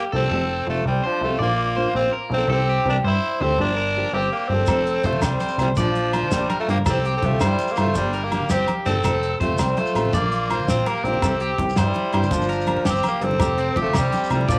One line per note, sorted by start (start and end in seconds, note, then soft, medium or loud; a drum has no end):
0.00 0.11 G4 medium
0.12 0.28 C2 medium
0.12 0.24 F3 medium
0.12 0.25 A#3 medium
0.12 0.65 C4 medium
0.12 0.25 D4 medium
0.12 0.28 A4 medium
0.12 0.64 A4 medium
0.16 0.26 G4 medium
0.29 0.62 F1 loud
0.29 0.42 F3 medium
0.29 0.43 A3 medium
0.29 0.43 C4 medium
0.29 0.43 G4 medium
0.29 0.65 A4 medium
0.67 0.83 F1 medium
0.67 0.78 F3 medium
0.67 0.79 A3 medium
0.67 0.86 A3 medium
0.67 0.79 C4 medium
0.67 0.85 F4 medium
0.67 0.80 G4 medium
0.67 muted clean electric guitar stroke medium
0.85 1.01 C2 medium
0.85 1.07 G3 medium
0.85 1.07 C4 medium
1.04 1.22 F3 medium
1.04 1.23 D4 medium
1.04 1.38 C5 medium
1.21 1.37 C2 medium
1.21 1.33 F3 medium
1.21 1.33 A3 medium
1.21 1.40 A3 medium
1.21 1.34 C4 medium
1.21 1.41 F4 medium
1.21 1.34 G4 medium
1.39 1.86 A#1 medium
1.39 1.51 F3 medium
1.39 1.51 A#3 medium
1.39 1.92 A#3 medium
1.39 1.52 D4 medium
1.39 1.52 F4 medium
1.39 1.74 D5 medium
1.43 1.93 F4 medium
1.76 1.87 F3 medium
1.76 1.88 A#3 medium
1.76 1.88 D4 medium
1.76 1.88 F4 medium
1.76 2.11 C5 medium
1.95 2.10 A#1 medium
1.95 2.13 C4 medium
1.95 2.13 F4 medium
2.13 2.48 A#4 medium
2.30 2.46 B1 medium
2.30 2.42 F3 medium
2.30 2.42 A#3 medium
2.30 2.49 C4 medium
2.30 2.43 D4 medium
2.30 2.43 F4 medium
2.36 2.51 A4 medium
2.48 2.79 C2 loud
2.48 2.60 E3 medium
2.48 2.61 C4 medium
2.48 2.61 E4 medium
2.48 2.61 G4 medium
2.48 2.67 A4 medium
2.52 2.85 C4 medium
2.52 2.86 G4 medium
2.69 3.03 G4 medium
2.85 3.01 C2 medium
2.85 2.96 E3 medium
2.85 2.97 C4 medium
2.85 2.97 E4 medium
2.85 2.98 G4 medium
2.85 2.96 A#4 medium
2.90 2.97 D4 medium
3.04 3.20 G2 loud
3.04 3.43 E4 medium
3.04 3.39 C5 medium
3.04 3.45 C5 medium
3.40 3.56 D2 medium
3.40 3.51 E3 medium
3.40 3.52 C4 medium
3.40 3.60 C4 medium
3.40 3.52 E4 medium
3.40 3.52 G4 medium
3.40 3.60 A4 medium
3.40 3.76 C5 medium
3.58 4.04 G1 medium
3.58 3.70 F3 medium
3.58 3.70 A#3 medium
3.58 3.70 D4 medium
3.58 4.15 D4 medium
3.58 3.70 G4 medium
3.62 4.18 A#4 medium
3.77 4.12 A#4 medium
3.95 4.06 F3 medium
3.95 4.07 A#3 medium
3.95 4.07 D4 medium
3.95 4.07 G4 medium
4.13 4.29 G1 medium
4.13 4.32 C4 medium
4.13 4.49 G4 medium
4.13 4.34 G4 medium
4.32 4.50 A#3 medium
4.32 4.55 G4 medium
4.48 4.65 G1 medium
4.48 4.61 F3 medium
4.48 4.62 A#3 medium
4.48 5.07 C4 loud
4.52 4.62 D4 medium
4.52 4.62 G4 medium
4.52 5.07 A4 medium
4.67 4.99 F1 loud
4.67 4.79 A3 medium
4.67 4.80 C4 medium
4.67 4.80 G4 medium
4.67 5.03 A4 medium
4.67 muted nylon-string guitar stroke medium
4.67 kick medium
4.67 closed hi-hat medium
4.67 high conga medium
4.67 low agogo medium
4.67 shekere medium
4.77 low conga soft
4.87 closed hi-hat soft
5.03 5.20 F1 medium
5.03 5.15 F3 medium
5.03 5.15 A3 medium
5.03 5.26 A3 medium
5.03 5.15 C4 medium
5.03 5.25 F4 medium
5.03 5.16 G4 medium
5.03 5.39 C5 medium
5.03 kick medium
5.03 closed hi-hat soft
5.03 high conga medium
5.12 low conga medium
5.22 5.37 C2 loud
5.22 5.60 G3 medium
5.22 5.59 C4 medium
5.22 snare medium
5.22 closed hi-hat medium
5.22 low agogo medium
5.22 shekere medium
5.40 5.76 C5 medium
5.40 closed hi-hat soft
5.40 high conga medium
5.40 shekere soft
5.49 shekere soft
5.58 5.74 C2 medium
5.58 5.70 F3 soft
5.58 5.70 A3 medium
5.58 5.70 C4 medium
5.58 5.68 E4 medium
5.58 5.71 G4 medium
5.58 closed hi-hat soft
5.58 low agogo medium
5.58 shekere soft
5.62 5.70 G3 medium
5.68 low conga medium
5.76 6.23 A#1 medium
5.76 5.88 F3 medium
5.76 6.34 F3 medium
5.76 5.88 A#3 medium
5.76 5.88 D4 medium
5.76 6.34 D4 medium
5.76 5.89 F4 medium
5.76 6.12 D5 medium
5.76 kick medium
5.76 closed hi-hat medium
5.76 high conga medium
5.76 shekere medium
5.95 closed hi-hat soft
6.13 6.24 F3 medium
6.13 6.25 A#3 medium
6.13 6.25 D4 medium
6.13 6.26 F4 medium
6.13 6.48 C5 medium
6.13 closed hi-hat soft
6.13 high conga medium
6.13 low agogo medium
6.23 low conga medium
6.31 6.47 A#1 medium
6.31 6.59 G3 medium
6.31 6.59 D4 medium
6.31 snare medium
6.31 closed hi-hat medium
6.31 low conga soft
6.31 shekere medium
6.42 low conga soft
6.50 6.84 A#4 medium
6.50 closed hi-hat soft
6.50 high conga medium
6.50 low agogo medium
6.59 6.68 A3 medium
6.59 6.68 F4 medium
6.68 6.84 G2 medium
6.68 6.79 F3 medium
6.68 6.80 A#3 medium
6.68 6.78 A#3 medium
6.68 6.80 D4 medium
6.68 6.80 F4 medium
6.68 6.78 G4 medium
6.68 closed hi-hat soft
6.78 low conga medium
6.85 7.17 C2 loud
6.85 6.97 E3 medium
6.85 6.97 C4 medium
6.85 6.97 E4 medium
6.85 6.98 G4 medium
6.85 7.13 G4 medium
6.85 7.04 A4 medium
6.85 kick medium
6.85 closed hi-hat medium
6.85 high conga medium
6.85 low agogo medium
6.85 shekere medium
6.90 7.14 C4 medium
6.95 low conga soft
7.05 7.40 G4 medium
7.05 closed hi-hat soft
7.16 7.27 C4 medium
7.16 7.28 A4 medium
7.22 7.38 C2 medium
7.22 7.33 E3 medium
7.22 7.42 A3 medium
7.22 7.34 C4 medium
7.22 7.35 E4 medium
7.22 7.35 G4 medium
7.22 kick medium
7.22 closed hi-hat soft
7.22 high conga medium
7.26 7.41 F4 medium
7.31 low conga medium
7.40 7.56 G2 loud
7.40 7.73 G3 medium
7.40 7.72 E4 medium
7.40 7.75 C5 medium
7.40 snare medium
7.40 closed hi-hat medium
7.40 low agogo medium
7.40 shekere medium
7.59 closed hi-hat soft
7.59 high conga medium
7.59 shekere soft
7.68 7.79 G4 medium
7.68 shekere soft
7.72 7.79 A#3 medium
7.72 shekere soft
7.76 7.93 G2 medium
7.76 7.88 E3 medium
7.76 7.96 A3 medium
7.76 7.88 E4 medium
7.76 7.89 G4 medium
7.76 8.12 C5 medium
7.76 muted nylon-string guitar stroke medium
7.76 closed hi-hat soft
7.76 low agogo medium
7.80 7.96 F4 medium
7.87 low conga medium
7.95 8.41 G1 medium
7.95 8.06 F3 medium
7.95 8.26 G3 medium
7.95 8.07 A#3 medium
7.95 8.26 D4 medium
7.95 8.07 D4 medium
7.95 8.07 G4 medium
7.95 kick medium
7.95 closed hi-hat medium
7.95 high conga medium
7.95 shekere medium
8.13 8.48 A#4 medium
8.13 closed hi-hat soft
8.24 8.33 A#3 medium
8.24 8.33 G4 medium
8.31 8.42 F3 medium
8.31 8.43 A#3 medium
8.31 8.53 A#3 medium
8.31 8.43 D4 medium
8.31 8.44 G4 medium
8.31 8.52 G4 medium
8.31 closed hi-hat soft
8.31 high conga medium
8.31 low agogo medium
8.41 low conga medium
8.50 8.65 G1 medium
8.50 8.69 C4 medium
8.50 8.85 G4 medium
8.50 8.69 G4 medium
8.50 snare medium
8.50 closed hi-hat medium
8.50 low conga soft
8.50 shekere medium
8.60 low conga soft
8.68 closed hi-hat soft
8.68 high conga medium
8.68 low agogo medium
8.86 9.01 G1 medium
8.86 8.97 F3 medium
8.86 8.98 A#3 medium
8.86 9.37 C4 medium
8.86 8.98 D4 medium
8.86 8.99 G4 medium
8.86 9.04 A4 medium
8.86 9.38 A4 medium
8.86 closed hi-hat soft
8.96 low conga medium
9.04 9.35 F1 loud
9.04 9.15 F3 medium
9.04 9.16 A3 medium
9.04 9.16 C4 medium
9.04 9.16 G4 medium
9.04 9.39 A4 medium
9.04 kick medium
9.04 closed hi-hat medium
9.04 high conga medium
9.04 low agogo medium
9.04 shekere medium
9.15 low conga soft
9.23 closed hi-hat soft
9.39 9.56 F1 medium
9.39 9.51 F3 medium
9.39 9.52 A3 medium
9.39 9.62 A3 medium
9.39 9.52 C4 medium
9.39 9.63 F4 medium
9.39 9.53 G4 medium
9.39 9.75 C5 medium
9.39 kick medium
9.39 closed hi-hat soft
9.39 high conga medium
9.50 low conga medium
9.58 9.74 C2 loud
9.58 9.80 G3 medium
9.58 9.81 C4 medium
9.58 snare medium
9.58 closed hi-hat medium
9.58 low agogo medium
9.58 shekere medium
9.77 10.18 A3 medium
9.77 10.15 F4 medium
9.77 10.12 C5 medium
9.77 closed hi-hat soft
9.77 high conga medium
9.86 shekere soft
9.95 10.10 A1 medium
9.95 10.06 F3 medium
9.95 10.07 A3 medium
9.95 10.07 C4 medium
9.95 10.07 G4 medium
9.95 closed hi-hat soft
9.95 low agogo medium
9.95 shekere soft
10.05 low conga medium
10.12 10.59 A#1 loud
10.12 10.24 F3 medium
10.12 10.24 A#3 medium
10.12 10.24 D4 medium
10.12 10.25 F4 medium
10.12 10.69 F4 medium
10.12 10.48 D5 medium
10.12 kick medium
10.12 closed hi-hat medium
10.12 high conga medium
10.12 shekere medium
10.16 10.68 A#3 medium
10.32 closed hi-hat soft
10.50 10.61 F3 medium
10.50 10.61 A#3 medium
10.50 10.62 D4 medium
10.50 10.85 C5 medium
10.50 muted nylon-string guitar stroke medium
10.50 closed hi-hat soft
10.50 high conga medium
10.50 low agogo medium
10.60 low conga medium
10.67 10.83 A#1 medium
10.67 10.89 C4 medium
10.67 10.91 F4 medium
10.67 snare medium
10.67 closed hi-hat medium
10.67 low conga soft
10.67 shekere medium
10.79 low conga soft
10.86 11.06 A#3 medium
10.86 11.06 G4 medium
10.86 11.21 A#4 medium
10.86 closed hi-hat soft
10.86 high conga medium
10.86 low agogo medium
11.04 11.19 A#1 medium
11.04 11.15 F3 medium
11.04 11.16 A#3 medium
11.04 11.59 C4 medium
11.04 11.16 D4 medium
11.04 11.17 F4 medium
11.04 11.60 G4 medium
11.04 closed hi-hat soft
11.14 low conga medium
11.22 11.53 C2 loud
11.22 11.33 E3 medium
11.22 11.34 C4 medium
11.22 11.34 E4 medium
11.22 11.34 G4 medium
11.22 11.40 A4 medium
11.22 kick medium
11.22 closed hi-hat medium
11.22 high conga medium
11.22 low agogo medium
11.22 shekere medium
11.40 11.75 G4 medium
11.40 closed hi-hat soft
11.40 low conga soft
11.50 low conga soft
11.58 11.74 C2 medium
11.58 11.70 E3 medium
11.58 11.71 C4 medium
11.58 11.71 E4 medium
11.58 11.71 G4 medium
11.58 kick medium
11.58 closed hi-hat soft
11.58 high conga medium
11.58 low conga soft
11.69 shekere soft
11.76 11.92 G2 loud
11.76 12.32 G3 medium
11.76 12.35 E4 medium
11.76 12.12 C5 medium
11.76 snare medium
11.76 closed hi-hat medium
11.76 low conga soft
11.76 low agogo medium
11.76 shekere medium
11.94 closed hi-hat soft
11.94 high conga medium
12.13 12.29 G2 medium
12.13 12.24 E3 medium
12.13 12.25 C4 medium
12.13 12.25 E4 medium
12.13 12.26 G4 medium
12.13 12.48 C5 medium
12.13 closed hi-hat soft
12.13 low agogo medium
12.23 low conga medium
12.23 shekere soft
12.31 12.77 G1 medium
12.31 12.86 F3 medium
12.31 12.43 F3 medium
12.31 12.43 A#3 medium
12.31 12.87 D4 medium
12.31 12.43 D4 medium
12.31 muted nylon-string guitar stroke medium
12.31 kick medium
12.31 closed hi-hat medium
12.31 high conga medium
12.31 shekere medium
12.42 shekere soft
12.49 12.84 A#4 medium
12.49 closed hi-hat soft
12.49 shekere soft
12.61 shekere soft
12.67 12.78 F3 medium
12.67 12.79 A#3 medium
12.67 12.80 D4 medium
12.67 12.80 G4 medium
12.67 closed hi-hat soft
12.67 high conga medium
12.67 low conga soft
12.67 low agogo medium
12.77 low conga medium
12.85 13.01 G1 medium
12.85 13.20 G4 medium
12.85 snare medium
12.85 closed hi-hat medium
12.85 shekere medium
12.89 13.05 C4 medium
12.89 13.05 G4 medium
12.97 shekere soft
13.03 closed hi-hat soft
13.03 high conga medium
13.03 low conga soft
13.03 low agogo medium
13.03 shekere soft
13.07 13.26 A#3 medium
13.07 13.27 G4 medium
13.13 low conga soft
13.21 13.37 G1 medium
13.21 13.33 F3 medium
13.21 13.33 A#3 medium
13.21 13.78 C4 medium
13.21 13.34 D4 medium
13.21 13.34 G4 medium
13.21 13.78 A4 medium
13.21 muted clean electric guitar stroke medium
13.21 closed hi-hat soft
13.21 low conga soft
13.31 low conga medium
13.39 13.70 F1 loud
13.39 13.51 F3 medium
13.39 13.51 A3 medium
13.39 13.52 C4 medium
13.39 13.58 G4 medium
13.39 13.52 G4 medium
13.39 kick medium
13.39 closed hi-hat medium
13.39 high conga medium
13.39 low agogo medium
13.39 shekere medium
13.50 low conga soft
13.58 13.76 C4 medium
13.58 closed hi-hat soft
13.75 13.92 F1 medium
13.75 13.87 F3 medium
13.75 13.87 A3 medium
13.75 13.88 C4 medium
13.75 13.94 G4 medium
13.75 kick medium
13.75 closed hi-hat soft
13.75 high conga medium
13.80 13.96 A3 medium
13.80 13.95 F4 medium
13.87 low conga medium
13.93 14.10 C2 loud
13.93 14.30 C4 medium
13.93 14.30 G4 medium
13.93 snare medium
13.93 closed hi-hat medium
13.93 low agogo medium
13.93 shekere medium
13.98 14.30 G3 medium
14.12 closed hi-hat soft
14.12 high conga medium
14.12 shekere soft
14.24 shekere soft
14.30 14.46 C2 medium
14.30 14.41 F3 medium
14.30 14.42 A3 medium
14.30 14.42 C4 medium
14.30 14.43 G4 medium
14.30 closed hi-hat soft
14.30 low agogo medium
14.30 shekere soft
14.34 14.50 G3 medium
14.34 14.50 E4 medium
14.41 low conga medium
14.48 14.59 A#1 medium
14.48 14.59 F3 medium
14.48 14.59 A#3 medium
14.48 14.59 D4 medium
14.48 14.59 F4 medium
14.48 14.59 D5 medium
14.48 muted nylon-string guitar stroke medium
14.48 kick medium
14.48 closed hi-hat medium
14.48 high conga medium
14.48 shekere medium
14.54 14.59 D4 medium